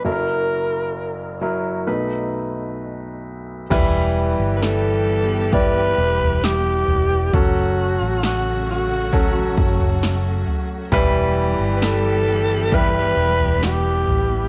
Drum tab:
CC |----------------|x---------------|----------------|----------------|
SD |----------------|----o-------o---|----o-------o---|----o-------o---|
FT |----------------|o-------o--o--o-|o-------o--o--o-|o-------o--o--o-|
BD |----------------|o-------o-------|o-------o-o-----|o-------o-------|